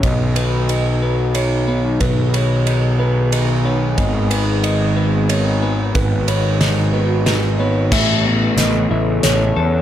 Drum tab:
CC |------|------|------|------|
RD |xxx-x-|xxx-x-|xxx-x-|xxx-x-|
HH |------|------|------|------|
SD |------|------|------|--o-o-|
BD |o-----|o-----|o-----|o-----|

CC |x-----|
RD |------|
HH |--x-x-|
SD |o-o-o-|
BD |o-----|